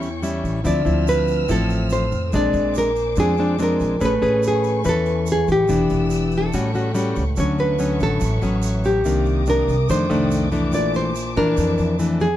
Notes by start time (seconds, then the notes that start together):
Already playing: E2 E3 A3 C#5 G5 C#6
0.02 shaker
0.22 G3 C#4 E4, shaker
0.44 A1, shaker
0.64 D2 D3 F3 C4 E4 D5 E6 F6, shaker
0.85 D2 F3 C4 E4, shaker
1.07 B4, shaker
1.28 shaker
1.48 A1 A2 F3 C4 E4 A4, shaker
1.70 shaker
1.90 C5, shaker
2.12 F2, shaker
2.32 A#1 A#2 G#3 C4 D4 C5 D5 G#5 D6, shaker
2.53 A#1, shaker
2.74 A#4, shaker
2.96 shaker
3.16 F2 F3 G#3 C4 D4 G#4, shaker
3.37 G#3 C4 D4, shaker
3.59 G#3 C4 D4 A#4, shaker
3.80 A#1, shaker
4.00 A1 A3 C#4 G#4 B4 C#6, shaker
4.05 B4
4.22 A1 C#4 G#4 B4, shaker
4.43 shaker
4.48 G#4
4.64 shaker
4.84 E2 E3 C#4 B4, shaker
4.89 A4
5.06 shaker
5.26 shaker
5.32 G#4
5.48 A1, shaker
5.52 G4
5.68 E1 E3 B3 D4 G4 D5 G5 E6, shaker
5.90 E1, shaker
6.10 shaker
6.32 shaker
6.37 A4
6.52 A1 A2 G3 C#4 F#4 B4 F#5 C#6, shaker
6.74 G3 C#4 F#4, shaker
6.95 G3 C#4 F#4, shaker
7.16 C#2, shaker
7.36 D2 D3 F#3 B3 C#4 B4 C#5 E5 F#5 C#6, shaker
7.58 B4, shaker
7.79 F#3 B3 C#4, shaker
8.00 A1 A4, shaker
8.20 A1 A2, shaker
8.42 A1 F#3 B3 C#4, shaker
8.62 shaker
8.84 G4, shaker
9.04 C2 C3 D#3 A#3 D4 A#4 D6 D#6, shaker
9.25 shaker
9.46 D#3 A#3 D4 A#4, shaker
9.68 C2, shaker
9.88 F2 D#3 A3 D4 A4 C5 G5, shaker
10.09 C2 D#3 A3 D4, shaker
10.31 shaker
10.52 E3 A3 D4, shaker
10.72 A#1 A#2 C5 D5 E5 A5, shaker
10.94 C5, shaker
11.15 shaker
11.36 F2 E3 D4 A#4, shaker
11.57 F2, shaker
11.78 F2, shaker
11.99 E3 A3 D4, shaker
12.20 G#4, shaker